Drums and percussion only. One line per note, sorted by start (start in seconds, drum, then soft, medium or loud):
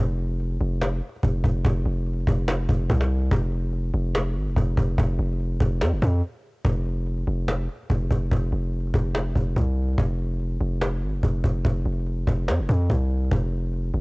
0.19 cajon slap soft
0.40 cajon slap soft
0.51 cajon slap soft
0.61 cajon slap soft
0.81 cajon slap loud
1.02 cajon slap soft
1.09 cajon slap soft
1.16 cajon slap soft
1.23 cajon bass medium
1.44 cajon bass loud
1.65 cajon bass loud
2.06 cajon slap soft
2.13 cajon slap soft
2.20 cajon slap soft
2.27 cajon bass loud
2.48 cajon slap loud
2.69 cajon bass medium
2.90 cajon bass loud
3.01 cajon slap medium
3.16 cajon slap soft
3.22 cajon slap soft
3.27 cajon slap soft
3.31 cajon bass loud
3.52 cajon slap soft
3.73 cajon slap soft
3.84 cajon slap soft
3.94 cajon slap soft
4.15 cajon slap loud
4.36 cajon slap soft
4.43 cajon slap soft
4.50 cajon slap soft
4.56 cajon bass medium
4.77 cajon bass medium
4.98 cajon bass loud
5.19 cajon slap soft
5.26 cajon slap soft
5.33 cajon slap soft
5.40 cajon slap soft
5.61 cajon bass loud
5.81 cajon slap loud
6.02 cajon bass medium
6.65 cajon bass loud
6.86 cajon slap soft
7.06 cajon slap soft
7.17 cajon slap soft
7.27 cajon slap soft
7.48 cajon slap loud
7.69 cajon slap soft
7.76 cajon slap soft
7.83 cajon slap soft
7.90 cajon bass medium
8.11 cajon bass medium
8.31 cajon bass loud
8.52 cajon slap soft
8.73 cajon slap soft
8.80 cajon slap soft
8.87 cajon slap soft
8.94 cajon bass loud
9.15 cajon slap loud
9.36 cajon bass medium
9.56 cajon bass medium
9.77 cajon slap soft
9.83 cajon slap soft
9.88 cajon slap soft
9.93 cajon slap soft
9.98 cajon bass loud
10.19 cajon slap soft
10.40 cajon slap soft
10.51 cajon slap soft
10.61 cajon slap soft
10.81 cajon slap loud
11.02 cajon slap soft
11.09 cajon slap soft
11.16 cajon slap soft
11.23 cajon bass medium
11.44 cajon bass medium
11.65 cajon bass loud
11.86 cajon slap soft
11.93 cajon slap soft
11.99 cajon slap soft
12.06 cajon slap soft
12.27 cajon bass loud
12.48 cajon slap loud
12.69 cajon bass medium
12.90 cajon bass medium
13.11 cajon slap soft
13.18 cajon slap soft
13.25 cajon slap soft
13.31 cajon bass loud
13.52 cajon slap soft
13.73 cajon slap soft
13.84 cajon slap soft
13.94 cajon slap soft